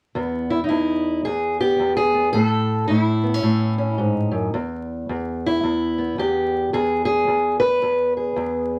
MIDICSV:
0, 0, Header, 1, 2, 480
1, 0, Start_track
1, 0, Key_signature, 4, "major"
1, 0, Tempo, 546946
1, 140, Time_signature, 4, 2, 24, 8
1, 7714, End_track
2, 0, Start_track
2, 0, Title_t, "Steel-string acoustic guitar"
2, 0, Program_c, 0, 25
2, 132, Note_on_c, 0, 40, 73
2, 138, Note_on_c, 0, 59, 45
2, 442, Note_on_c, 0, 64, 69
2, 523, Note_off_c, 0, 64, 0
2, 557, Note_off_c, 0, 59, 0
2, 561, Note_on_c, 0, 63, 58
2, 603, Note_on_c, 0, 64, 77
2, 604, Note_off_c, 0, 40, 0
2, 615, Note_on_c, 0, 40, 68
2, 1092, Note_off_c, 0, 64, 0
2, 1094, Note_off_c, 0, 40, 0
2, 1094, Note_off_c, 0, 63, 0
2, 1096, Note_on_c, 0, 68, 81
2, 1105, Note_on_c, 0, 40, 67
2, 1405, Note_off_c, 0, 68, 0
2, 1406, Note_on_c, 0, 59, 44
2, 1408, Note_on_c, 0, 67, 86
2, 1564, Note_off_c, 0, 40, 0
2, 1575, Note_on_c, 0, 40, 63
2, 1722, Note_off_c, 0, 67, 0
2, 1725, Note_on_c, 0, 68, 88
2, 1869, Note_off_c, 0, 59, 0
2, 1880, Note_on_c, 0, 59, 40
2, 2039, Note_off_c, 0, 68, 0
2, 2043, Note_on_c, 0, 68, 94
2, 2056, Note_on_c, 0, 45, 71
2, 2058, Note_off_c, 0, 40, 0
2, 2062, Note_off_c, 0, 59, 0
2, 2140, Note_off_c, 0, 68, 0
2, 2140, Note_on_c, 0, 69, 94
2, 2521, Note_off_c, 0, 69, 0
2, 2525, Note_on_c, 0, 64, 80
2, 2530, Note_off_c, 0, 45, 0
2, 2541, Note_on_c, 0, 45, 67
2, 2839, Note_on_c, 0, 59, 46
2, 2931, Note_off_c, 0, 59, 0
2, 2931, Note_on_c, 0, 61, 39
2, 2998, Note_off_c, 0, 45, 0
2, 3009, Note_on_c, 0, 45, 70
2, 3308, Note_off_c, 0, 61, 0
2, 3319, Note_on_c, 0, 61, 45
2, 3481, Note_off_c, 0, 64, 0
2, 3481, Note_on_c, 0, 63, 80
2, 3493, Note_on_c, 0, 44, 63
2, 3783, Note_off_c, 0, 44, 0
2, 3787, Note_on_c, 0, 42, 59
2, 3960, Note_off_c, 0, 61, 0
2, 3973, Note_off_c, 0, 63, 0
2, 3975, Note_off_c, 0, 45, 0
2, 3976, Note_off_c, 0, 42, 0
2, 3983, Note_on_c, 0, 40, 75
2, 4465, Note_off_c, 0, 40, 0
2, 4469, Note_on_c, 0, 40, 71
2, 4795, Note_on_c, 0, 64, 81
2, 4940, Note_off_c, 0, 40, 0
2, 4944, Note_on_c, 0, 40, 71
2, 5249, Note_on_c, 0, 59, 43
2, 5415, Note_off_c, 0, 40, 0
2, 5426, Note_on_c, 0, 40, 70
2, 5433, Note_off_c, 0, 64, 0
2, 5437, Note_on_c, 0, 67, 81
2, 5897, Note_off_c, 0, 40, 0
2, 5908, Note_off_c, 0, 67, 0
2, 5908, Note_on_c, 0, 40, 71
2, 5913, Note_on_c, 0, 68, 84
2, 6178, Note_off_c, 0, 68, 0
2, 6189, Note_on_c, 0, 68, 91
2, 6372, Note_off_c, 0, 40, 0
2, 6382, Note_on_c, 0, 40, 65
2, 6664, Note_off_c, 0, 68, 0
2, 6667, Note_on_c, 0, 71, 92
2, 6856, Note_off_c, 0, 40, 0
2, 6866, Note_on_c, 0, 40, 64
2, 7151, Note_off_c, 0, 71, 0
2, 7170, Note_on_c, 0, 68, 44
2, 7329, Note_off_c, 0, 40, 0
2, 7339, Note_on_c, 0, 40, 72
2, 7714, Note_off_c, 0, 40, 0
2, 7714, Note_off_c, 0, 59, 0
2, 7714, Note_off_c, 0, 68, 0
2, 7714, End_track
0, 0, End_of_file